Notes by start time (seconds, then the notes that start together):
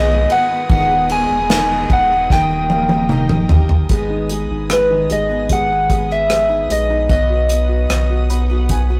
Already playing: B1 G#2 B2 D#3 G#3 B3 D#4 G#4 B4 D#5 G#5 D#6
0.11 G#3 B3 D#4 B4
0.30 G#3 B3 D#4 B4 F#5, ride
0.69 D#1 G#2 D#3 G#3 B3 G#4 B4 F#5, kick, ride
0.91 B3 G#4 B4
1.09 G#3 B3 G#4 B4 G#5, ride
1.30 E1
1.50 D#3 G#3 B3 D#4 G#4 B4, snare, ride
1.90 D#1 G#3 B3 G#4 B4 F#5, kick, ride
2.11 B3 G#4 B4
2.29 D#1 G2 D#3 A#3 D#4 G4 A#4 G5, kick, snare
2.50 D#4 G4 A#4
2.70 A#3 D#4 G4 A#4, high tom
2.89 D#4 G4 A#4, high tom
3.09 D#3 A#3 D#4 G4 A#4, mid tom
3.29 D#4 G4 A#4, mid tom
3.49 G1 A#3 D#4 G4 A#4, floor tom
3.69 floor tom
3.89 G#1 G#2 D#3 G#3 B3 D#4 B4 G#5 D#6, kick, closed hi-hat
4.10 D#4
4.29 G#3 B3 D#4 B4, closed hi-hat
4.50 G#1 D#4
4.70 G#2 D#3 G#3 B3 D#4 B4, cross-stick, closed hi-hat
4.91 D#3
5.09 G#1 G#3 B3 D#4 B4 D#5, closed hi-hat
5.29 G#3 B3 D#4 B4
5.49 G#3 F#5, kick, closed hi-hat
5.70 G#3 B3 D#4 B4
5.90 G#3 B3 D#4 B4, kick, closed hi-hat
6.11 E5, cross-stick
6.29 G#2 D#3 G#3 B3 D#4 B4, cross-stick, closed hi-hat
6.49 G#3 B3 D#4 B4
6.69 A#1 G#3 D#5, closed hi-hat
6.89 G#3 B3 D#4 B4
7.09 B1 B2 D#3 F#3 B3 D#4 B4 D#5 F#5, kick, closed hi-hat
7.30 F#4
7.48 F#3 B3 D#4 B4, closed hi-hat
7.69 F#4
7.89 B1 B2 D#3 F#3 B3 D#4 B4, cross-stick, closed hi-hat
8.10 F#4
8.29 F#3 B3 D#4 B4 B5, closed hi-hat
8.49 F#3 B3 D#4 F#4 B4
8.69 B3 G#5, kick, closed hi-hat
8.89 F#3 B3 D#4 F#4 B4